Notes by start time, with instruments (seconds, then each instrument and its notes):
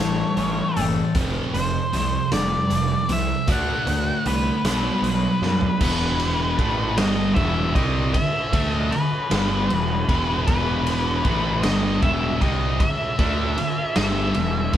Already playing: clean electric guitar A2 E3
0.00 picked electric bass A1, distorted electric guitar A2 E3, clean electric guitar A3, lead electric guitar C#5
0.37 picked electric bass A1, distorted electric guitar A2 E3, clean electric guitar C#4, closed hi-hat
0.77 picked electric bass F#1, distorted electric guitar A2 E3, clean electric guitar A4, closed hi-hat
1.15 picked electric bass F1, distorted electric guitar F2 C3 F3, kick, closed hi-hat
1.54 picked electric bass F1, distorted electric guitar F2 C3, lead electric guitar C5, closed hi-hat
1.93 picked electric bass C2, distorted electric guitar F2 C3, closed hi-hat
2.31 picked electric bass F1, distorted electric guitar F2 C3, lead electric guitar D5, snare, closed hi-hat
2.70 picked electric bass F1, distorted electric guitar F2 C3, closed hi-hat
3.09 picked electric bass C2, distorted electric guitar F2 C3, lead electric guitar E5, closed hi-hat
3.47 picked electric bass D2, distorted electric guitar D3 A3 D4, kick, closed hi-hat
3.52 lead electric guitar F#5
3.87 picked electric bass D2, distorted electric guitar D3 A3, closed hi-hat
4.26 picked electric bass C2, distorted electric guitar D3 A3, lead electric guitar B4, closed hi-hat
4.64 picked electric bass B1, distorted electric guitar B2 F#3 B3, snare, closed hi-hat
5.02 picked electric bass B1, distorted electric guitar B2 F#3, closed hi-hat
5.42 picked electric bass F#2, distorted electric guitar B2 F#3, snare
5.61 floor tom
5.80 picked electric bass E1, distorted electric guitar E2 B2 E3, lead electric guitar B4, kick, crash
6.20 ride
6.59 picked electric bass A1, distorted electric guitar A2 E3 A3, kick, ride
6.97 picked electric bass G1, distorted electric guitar G2 D3 G3, lead electric guitar D#5, snare, ride
7.35 picked electric bass E1, distorted electric guitar E2 B2 E3, lead electric guitar E5, kick, ride
7.75 picked electric bass C2, distorted electric guitar C3 G3 C4, lead electric guitar D#5, kick, ride
8.14 lead electric guitar E5, muted distorted electric guitar stroke, muted picked electric bass stroke, kick, ride
8.52 picked electric bass D2, distorted electric guitar D3 A3 D4, kick, ride
8.70 lead electric guitar D#5
8.92 lead electric guitar B4, muted distorted electric guitar stroke, muted picked electric bass stroke, ride
9.30 picked electric bass G1, distorted electric guitar G2 D3 G3, snare, ride
9.70 picked electric bass E1, distorted electric guitar E2 B2, ride
10.08 picked electric bass E1, distorted electric guitar E2 B2 E3, kick, ride
10.47 picked electric bass E1, distorted electric guitar E2 B2 E3, lead electric guitar B4, kick, ride
10.87 ride
11.25 picked electric bass A1, distorted electric guitar A2 E3 A3, kick, ride
11.62 picked electric bass G1, distorted electric guitar G2 D3 G3, lead electric guitar D#5, snare, ride
12.02 picked electric bass E1, distorted electric guitar E2 B2 E3, lead electric guitar E5, kick, ride
12.41 picked electric bass C2, distorted electric guitar C3 G3 C4, lead electric guitar D#5, kick, ride
12.80 lead electric guitar E5, muted picked electric bass stroke, muted distorted electric guitar stroke, kick, ride
13.19 picked electric bass D2, distorted electric guitar D3 A3 D4, kick, ride
13.57 muted picked electric bass stroke, muted distorted electric guitar stroke, ride
13.96 picked electric bass G1, distorted electric guitar G2 D3 G3, lead electric guitar E5, snare, ride
14.34 picked electric bass E1, distorted electric guitar E2 B2, ride
14.73 picked electric bass E1, distorted electric guitar E2 B2 E3, kick, ride